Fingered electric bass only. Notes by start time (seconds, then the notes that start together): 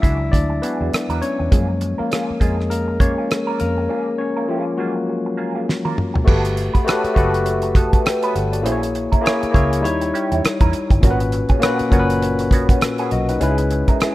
0.04 C#2
0.33 D2
0.81 E2
0.93 muted fingered electric bass stroke
1.09 E2
1.40 E2
1.52 F#2
2.00 muted fingered electric bass stroke
2.30 muted fingered electric bass stroke
2.41 F2
3.61 F2
6.28 G1
7.04 muted fingered electric bass stroke
7.17 F#1
8.36 G1
8.65 A#1
9.13 muted fingered electric bass stroke
9.43 muted fingered electric bass stroke
9.55 C#2
9.85 D#2
10.32 E2
10.45 muted fingered electric bass stroke
10.61 E2
10.91 G1
11.04 G#1
11.50 muted fingered electric bass stroke
11.80 muted fingered electric bass stroke
11.92 F#1
13.12 B1
13.41 C#2